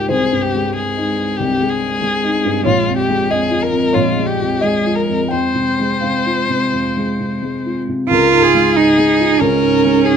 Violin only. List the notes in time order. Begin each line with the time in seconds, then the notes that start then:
Already playing: G4
0.11 G#4
0.42 G4
0.76 G#4
1.37 G4
1.69 G#4
2.65 F4
2.97 G4
3.31 G#4
3.62 A#4
3.94 F4
4.27 G4
4.62 G#4
4.95 A#4
5.31 C5
8.10 A#4
8.43 G#4
9.40 A#4
10.05 G#4